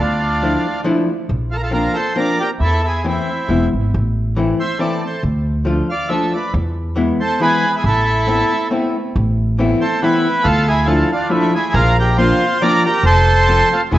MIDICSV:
0, 0, Header, 1, 4, 480
1, 0, Start_track
1, 0, Key_signature, 0, "minor"
1, 0, Tempo, 435414
1, 1418, Time_signature, 3, 2, 24, 8
1, 15415, End_track
2, 0, Start_track
2, 0, Title_t, "Accordion"
2, 0, Program_c, 0, 21
2, 0, Note_on_c, 0, 62, 81
2, 0, Note_on_c, 0, 65, 86
2, 891, Note_off_c, 0, 65, 0
2, 895, Note_off_c, 0, 62, 0
2, 1667, Note_on_c, 0, 65, 59
2, 1681, Note_on_c, 0, 69, 96
2, 1723, Note_off_c, 0, 65, 0
2, 1727, Note_on_c, 0, 70, 68
2, 1730, Note_off_c, 0, 69, 0
2, 1785, Note_off_c, 0, 70, 0
2, 1790, Note_on_c, 0, 65, 60
2, 1803, Note_on_c, 0, 69, 80
2, 1883, Note_off_c, 0, 65, 0
2, 1898, Note_off_c, 0, 69, 0
2, 1900, Note_on_c, 0, 65, 66
2, 1912, Note_on_c, 0, 70, 82
2, 2131, Note_on_c, 0, 69, 73
2, 2141, Note_off_c, 0, 65, 0
2, 2157, Note_on_c, 0, 72, 92
2, 2173, Note_off_c, 0, 70, 0
2, 2349, Note_off_c, 0, 69, 0
2, 2385, Note_off_c, 0, 72, 0
2, 2390, Note_on_c, 0, 70, 88
2, 2417, Note_on_c, 0, 74, 90
2, 2627, Note_off_c, 0, 70, 0
2, 2643, Note_on_c, 0, 67, 73
2, 2666, Note_off_c, 0, 74, 0
2, 2673, Note_on_c, 0, 70, 92
2, 2741, Note_off_c, 0, 67, 0
2, 2764, Note_off_c, 0, 70, 0
2, 2859, Note_on_c, 0, 64, 82
2, 2902, Note_on_c, 0, 69, 103
2, 3102, Note_off_c, 0, 64, 0
2, 3128, Note_on_c, 0, 64, 62
2, 3149, Note_off_c, 0, 69, 0
2, 3170, Note_on_c, 0, 68, 77
2, 3331, Note_off_c, 0, 64, 0
2, 3367, Note_on_c, 0, 60, 53
2, 3373, Note_off_c, 0, 68, 0
2, 3392, Note_on_c, 0, 64, 72
2, 4061, Note_off_c, 0, 60, 0
2, 4073, Note_off_c, 0, 64, 0
2, 5065, Note_on_c, 0, 72, 61
2, 5076, Note_on_c, 0, 76, 89
2, 5268, Note_off_c, 0, 72, 0
2, 5278, Note_on_c, 0, 69, 70
2, 5296, Note_off_c, 0, 76, 0
2, 5296, Note_on_c, 0, 74, 73
2, 5523, Note_off_c, 0, 69, 0
2, 5554, Note_on_c, 0, 69, 54
2, 5557, Note_off_c, 0, 74, 0
2, 5580, Note_on_c, 0, 72, 62
2, 5754, Note_off_c, 0, 69, 0
2, 5769, Note_off_c, 0, 72, 0
2, 6500, Note_on_c, 0, 77, 90
2, 6521, Note_on_c, 0, 74, 68
2, 6702, Note_on_c, 0, 76, 82
2, 6718, Note_off_c, 0, 74, 0
2, 6729, Note_off_c, 0, 77, 0
2, 6736, Note_on_c, 0, 69, 72
2, 6972, Note_off_c, 0, 69, 0
2, 6975, Note_on_c, 0, 74, 61
2, 6981, Note_off_c, 0, 76, 0
2, 7010, Note_on_c, 0, 71, 52
2, 7183, Note_off_c, 0, 74, 0
2, 7202, Note_off_c, 0, 71, 0
2, 7937, Note_on_c, 0, 72, 93
2, 7941, Note_on_c, 0, 69, 73
2, 8145, Note_off_c, 0, 69, 0
2, 8165, Note_off_c, 0, 72, 0
2, 8176, Note_on_c, 0, 68, 80
2, 8179, Note_on_c, 0, 71, 107
2, 8511, Note_off_c, 0, 68, 0
2, 8545, Note_on_c, 0, 64, 57
2, 8549, Note_off_c, 0, 71, 0
2, 8574, Note_on_c, 0, 68, 78
2, 8634, Note_off_c, 0, 64, 0
2, 8651, Note_on_c, 0, 64, 81
2, 8655, Note_off_c, 0, 68, 0
2, 8683, Note_on_c, 0, 69, 100
2, 9565, Note_off_c, 0, 64, 0
2, 9581, Note_off_c, 0, 69, 0
2, 10814, Note_on_c, 0, 72, 82
2, 10822, Note_on_c, 0, 69, 62
2, 11031, Note_off_c, 0, 69, 0
2, 11049, Note_off_c, 0, 72, 0
2, 11049, Note_on_c, 0, 71, 87
2, 11060, Note_on_c, 0, 64, 70
2, 11500, Note_off_c, 0, 64, 0
2, 11504, Note_on_c, 0, 69, 110
2, 11512, Note_on_c, 0, 65, 78
2, 11542, Note_off_c, 0, 71, 0
2, 11760, Note_off_c, 0, 65, 0
2, 11773, Note_on_c, 0, 68, 94
2, 11783, Note_off_c, 0, 69, 0
2, 11786, Note_on_c, 0, 64, 64
2, 11966, Note_on_c, 0, 69, 80
2, 11972, Note_on_c, 0, 65, 63
2, 11982, Note_off_c, 0, 68, 0
2, 11989, Note_off_c, 0, 64, 0
2, 12226, Note_off_c, 0, 65, 0
2, 12250, Note_off_c, 0, 69, 0
2, 12259, Note_on_c, 0, 65, 84
2, 12276, Note_on_c, 0, 62, 66
2, 12454, Note_on_c, 0, 64, 96
2, 12472, Note_off_c, 0, 62, 0
2, 12472, Note_on_c, 0, 57, 72
2, 12485, Note_off_c, 0, 65, 0
2, 12715, Note_off_c, 0, 57, 0
2, 12725, Note_off_c, 0, 64, 0
2, 12737, Note_on_c, 0, 68, 84
2, 12741, Note_on_c, 0, 64, 80
2, 12942, Note_off_c, 0, 64, 0
2, 12942, Note_on_c, 0, 70, 114
2, 12956, Note_on_c, 0, 65, 91
2, 12961, Note_off_c, 0, 68, 0
2, 13195, Note_off_c, 0, 65, 0
2, 13206, Note_off_c, 0, 70, 0
2, 13223, Note_on_c, 0, 70, 91
2, 13227, Note_on_c, 0, 67, 85
2, 13420, Note_off_c, 0, 70, 0
2, 13423, Note_off_c, 0, 67, 0
2, 13426, Note_on_c, 0, 72, 94
2, 13427, Note_on_c, 0, 65, 75
2, 13872, Note_off_c, 0, 65, 0
2, 13908, Note_on_c, 0, 74, 111
2, 13917, Note_on_c, 0, 70, 77
2, 13919, Note_off_c, 0, 72, 0
2, 14153, Note_off_c, 0, 70, 0
2, 14170, Note_on_c, 0, 70, 103
2, 14173, Note_off_c, 0, 74, 0
2, 14175, Note_on_c, 0, 67, 70
2, 14374, Note_off_c, 0, 67, 0
2, 14393, Note_off_c, 0, 70, 0
2, 14393, Note_on_c, 0, 72, 119
2, 14403, Note_on_c, 0, 69, 97
2, 15088, Note_off_c, 0, 69, 0
2, 15130, Note_on_c, 0, 69, 93
2, 15136, Note_on_c, 0, 65, 70
2, 15149, Note_off_c, 0, 72, 0
2, 15228, Note_off_c, 0, 69, 0
2, 15233, Note_off_c, 0, 65, 0
2, 15361, Note_on_c, 0, 64, 81
2, 15363, Note_on_c, 0, 68, 92
2, 15415, Note_off_c, 0, 64, 0
2, 15415, Note_off_c, 0, 68, 0
2, 15415, End_track
3, 0, Start_track
3, 0, Title_t, "Hollow-body jazz guitar"
3, 0, Program_c, 1, 26
3, 466, Note_on_c, 1, 53, 61
3, 470, Note_on_c, 1, 62, 42
3, 475, Note_on_c, 1, 57, 48
3, 481, Note_on_c, 1, 64, 48
3, 724, Note_off_c, 1, 53, 0
3, 726, Note_off_c, 1, 57, 0
3, 727, Note_off_c, 1, 62, 0
3, 729, Note_off_c, 1, 64, 0
3, 930, Note_on_c, 1, 53, 75
3, 939, Note_on_c, 1, 57, 58
3, 940, Note_on_c, 1, 62, 75
3, 946, Note_on_c, 1, 64, 82
3, 1194, Note_off_c, 1, 53, 0
3, 1196, Note_off_c, 1, 57, 0
3, 1198, Note_off_c, 1, 62, 0
3, 1201, Note_off_c, 1, 64, 0
3, 1881, Note_on_c, 1, 53, 55
3, 1891, Note_on_c, 1, 58, 47
3, 1899, Note_on_c, 1, 60, 42
3, 1900, Note_on_c, 1, 62, 66
3, 2150, Note_off_c, 1, 53, 0
3, 2156, Note_off_c, 1, 58, 0
3, 2157, Note_off_c, 1, 60, 0
3, 2159, Note_off_c, 1, 62, 0
3, 2375, Note_on_c, 1, 53, 68
3, 2377, Note_on_c, 1, 58, 51
3, 2384, Note_on_c, 1, 62, 68
3, 2388, Note_on_c, 1, 60, 58
3, 2638, Note_off_c, 1, 53, 0
3, 2640, Note_off_c, 1, 58, 0
3, 2642, Note_off_c, 1, 60, 0
3, 2642, Note_off_c, 1, 62, 0
3, 3351, Note_on_c, 1, 52, 56
3, 3358, Note_on_c, 1, 57, 36
3, 3361, Note_on_c, 1, 60, 41
3, 3366, Note_on_c, 1, 64, 58
3, 3610, Note_off_c, 1, 52, 0
3, 3610, Note_off_c, 1, 57, 0
3, 3614, Note_off_c, 1, 60, 0
3, 3617, Note_off_c, 1, 64, 0
3, 3838, Note_on_c, 1, 52, 59
3, 3843, Note_on_c, 1, 56, 46
3, 3852, Note_on_c, 1, 59, 59
3, 3857, Note_on_c, 1, 64, 60
3, 4097, Note_off_c, 1, 56, 0
3, 4098, Note_off_c, 1, 52, 0
3, 4104, Note_off_c, 1, 64, 0
3, 4106, Note_off_c, 1, 59, 0
3, 4809, Note_on_c, 1, 52, 66
3, 4817, Note_on_c, 1, 57, 58
3, 4827, Note_on_c, 1, 60, 43
3, 4835, Note_on_c, 1, 64, 61
3, 5066, Note_off_c, 1, 52, 0
3, 5071, Note_off_c, 1, 57, 0
3, 5073, Note_off_c, 1, 60, 0
3, 5079, Note_off_c, 1, 64, 0
3, 5280, Note_on_c, 1, 52, 64
3, 5285, Note_on_c, 1, 60, 55
3, 5290, Note_on_c, 1, 57, 54
3, 5294, Note_on_c, 1, 64, 63
3, 5542, Note_off_c, 1, 52, 0
3, 5544, Note_off_c, 1, 57, 0
3, 5545, Note_off_c, 1, 60, 0
3, 5547, Note_off_c, 1, 64, 0
3, 6229, Note_on_c, 1, 53, 65
3, 6239, Note_on_c, 1, 57, 56
3, 6247, Note_on_c, 1, 62, 44
3, 6250, Note_on_c, 1, 65, 74
3, 6497, Note_off_c, 1, 53, 0
3, 6502, Note_off_c, 1, 57, 0
3, 6502, Note_off_c, 1, 62, 0
3, 6507, Note_off_c, 1, 65, 0
3, 6717, Note_on_c, 1, 53, 60
3, 6721, Note_on_c, 1, 57, 64
3, 6729, Note_on_c, 1, 62, 48
3, 6735, Note_on_c, 1, 65, 69
3, 6980, Note_off_c, 1, 53, 0
3, 6983, Note_off_c, 1, 57, 0
3, 6984, Note_off_c, 1, 62, 0
3, 6989, Note_off_c, 1, 65, 0
3, 7669, Note_on_c, 1, 52, 62
3, 7678, Note_on_c, 1, 56, 53
3, 7679, Note_on_c, 1, 59, 66
3, 7690, Note_on_c, 1, 64, 59
3, 7936, Note_off_c, 1, 52, 0
3, 7937, Note_off_c, 1, 56, 0
3, 7940, Note_off_c, 1, 59, 0
3, 7945, Note_off_c, 1, 64, 0
3, 8154, Note_on_c, 1, 52, 63
3, 8160, Note_on_c, 1, 56, 50
3, 8169, Note_on_c, 1, 59, 52
3, 8172, Note_on_c, 1, 64, 80
3, 8418, Note_off_c, 1, 52, 0
3, 8418, Note_off_c, 1, 56, 0
3, 8420, Note_off_c, 1, 59, 0
3, 8425, Note_off_c, 1, 64, 0
3, 9115, Note_on_c, 1, 57, 60
3, 9120, Note_on_c, 1, 60, 46
3, 9128, Note_on_c, 1, 59, 41
3, 9135, Note_on_c, 1, 64, 64
3, 9378, Note_off_c, 1, 57, 0
3, 9382, Note_off_c, 1, 59, 0
3, 9382, Note_off_c, 1, 60, 0
3, 9388, Note_off_c, 1, 64, 0
3, 9599, Note_on_c, 1, 57, 75
3, 9605, Note_on_c, 1, 59, 54
3, 9609, Note_on_c, 1, 60, 72
3, 9615, Note_on_c, 1, 64, 65
3, 9865, Note_off_c, 1, 57, 0
3, 9866, Note_off_c, 1, 59, 0
3, 9871, Note_off_c, 1, 60, 0
3, 9871, Note_off_c, 1, 64, 0
3, 10566, Note_on_c, 1, 52, 58
3, 10571, Note_on_c, 1, 60, 50
3, 10578, Note_on_c, 1, 59, 58
3, 10579, Note_on_c, 1, 57, 53
3, 10587, Note_on_c, 1, 64, 69
3, 10829, Note_off_c, 1, 52, 0
3, 10833, Note_off_c, 1, 59, 0
3, 10833, Note_off_c, 1, 60, 0
3, 10835, Note_off_c, 1, 57, 0
3, 10839, Note_off_c, 1, 64, 0
3, 11052, Note_on_c, 1, 52, 78
3, 11057, Note_on_c, 1, 57, 62
3, 11061, Note_on_c, 1, 59, 62
3, 11063, Note_on_c, 1, 60, 54
3, 11070, Note_on_c, 1, 64, 77
3, 11311, Note_off_c, 1, 52, 0
3, 11312, Note_off_c, 1, 57, 0
3, 11312, Note_off_c, 1, 59, 0
3, 11317, Note_off_c, 1, 60, 0
3, 11318, Note_off_c, 1, 64, 0
3, 11981, Note_on_c, 1, 53, 48
3, 11987, Note_on_c, 1, 57, 51
3, 11990, Note_on_c, 1, 65, 57
3, 11997, Note_on_c, 1, 62, 47
3, 11997, Note_on_c, 1, 64, 43
3, 12251, Note_off_c, 1, 53, 0
3, 12252, Note_off_c, 1, 57, 0
3, 12253, Note_off_c, 1, 62, 0
3, 12255, Note_off_c, 1, 65, 0
3, 12256, Note_off_c, 1, 64, 0
3, 12456, Note_on_c, 1, 57, 72
3, 12459, Note_on_c, 1, 53, 77
3, 12470, Note_on_c, 1, 62, 63
3, 12473, Note_on_c, 1, 65, 86
3, 12479, Note_on_c, 1, 64, 60
3, 12725, Note_off_c, 1, 57, 0
3, 12729, Note_off_c, 1, 53, 0
3, 12731, Note_off_c, 1, 62, 0
3, 12731, Note_off_c, 1, 64, 0
3, 12734, Note_off_c, 1, 65, 0
3, 13427, Note_on_c, 1, 53, 53
3, 13434, Note_on_c, 1, 58, 51
3, 13436, Note_on_c, 1, 65, 70
3, 13444, Note_on_c, 1, 60, 60
3, 13445, Note_on_c, 1, 62, 58
3, 13687, Note_off_c, 1, 53, 0
3, 13688, Note_off_c, 1, 58, 0
3, 13691, Note_off_c, 1, 65, 0
3, 13694, Note_off_c, 1, 60, 0
3, 13695, Note_off_c, 1, 62, 0
3, 13916, Note_on_c, 1, 53, 84
3, 13920, Note_on_c, 1, 58, 52
3, 13928, Note_on_c, 1, 62, 65
3, 13930, Note_on_c, 1, 65, 70
3, 13931, Note_on_c, 1, 60, 58
3, 14171, Note_off_c, 1, 53, 0
3, 14171, Note_off_c, 1, 58, 0
3, 14173, Note_off_c, 1, 60, 0
3, 14175, Note_off_c, 1, 65, 0
3, 14177, Note_off_c, 1, 62, 0
3, 14858, Note_on_c, 1, 53, 54
3, 14866, Note_on_c, 1, 65, 48
3, 14869, Note_on_c, 1, 57, 55
3, 14874, Note_on_c, 1, 60, 46
3, 14875, Note_on_c, 1, 69, 66
3, 15122, Note_off_c, 1, 53, 0
3, 15124, Note_off_c, 1, 57, 0
3, 15124, Note_off_c, 1, 60, 0
3, 15124, Note_off_c, 1, 65, 0
3, 15129, Note_off_c, 1, 69, 0
3, 15336, Note_on_c, 1, 52, 63
3, 15344, Note_on_c, 1, 56, 65
3, 15346, Note_on_c, 1, 59, 54
3, 15353, Note_on_c, 1, 64, 56
3, 15361, Note_on_c, 1, 68, 54
3, 15415, Note_off_c, 1, 52, 0
3, 15415, Note_off_c, 1, 56, 0
3, 15415, Note_off_c, 1, 59, 0
3, 15415, Note_off_c, 1, 64, 0
3, 15415, Note_off_c, 1, 68, 0
3, 15415, End_track
4, 0, Start_track
4, 0, Title_t, "Upright bass"
4, 0, Program_c, 2, 32
4, 0, Note_on_c, 2, 38, 93
4, 598, Note_off_c, 2, 38, 0
4, 1425, Note_on_c, 2, 34, 91
4, 2048, Note_off_c, 2, 34, 0
4, 2865, Note_on_c, 2, 40, 94
4, 3493, Note_off_c, 2, 40, 0
4, 3843, Note_on_c, 2, 28, 72
4, 4074, Note_off_c, 2, 28, 0
4, 4115, Note_on_c, 2, 32, 68
4, 4305, Note_off_c, 2, 32, 0
4, 4346, Note_on_c, 2, 33, 95
4, 4964, Note_off_c, 2, 33, 0
4, 5770, Note_on_c, 2, 38, 100
4, 6392, Note_off_c, 2, 38, 0
4, 7205, Note_on_c, 2, 40, 104
4, 7827, Note_off_c, 2, 40, 0
4, 8643, Note_on_c, 2, 33, 97
4, 9269, Note_off_c, 2, 33, 0
4, 10093, Note_on_c, 2, 33, 99
4, 10717, Note_off_c, 2, 33, 0
4, 11523, Note_on_c, 2, 38, 112
4, 12142, Note_off_c, 2, 38, 0
4, 12947, Note_on_c, 2, 34, 127
4, 13568, Note_off_c, 2, 34, 0
4, 14370, Note_on_c, 2, 29, 102
4, 14999, Note_off_c, 2, 29, 0
4, 15348, Note_on_c, 2, 28, 103
4, 15415, Note_off_c, 2, 28, 0
4, 15415, End_track
0, 0, End_of_file